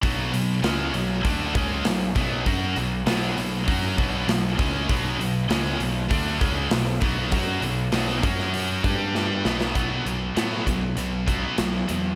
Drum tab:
HH |o-o-o-o-o-o-o-o-|o-o-o-o-o-o-o-o-|o-o-o-o-o-o-o-o-|o-o-o-o-o-o-----|
SD |----o-------o---|----o-------o---|----o-------o---|----o--o----o-oo|
BD |o-------o-o---o-|o-------o-o---o-|o-------o-o---o-|o-----o---o-----|

HH |x-x-x-x-x-x-x-x-|
SD |----o-------o---|
BD |o-----o---o-----|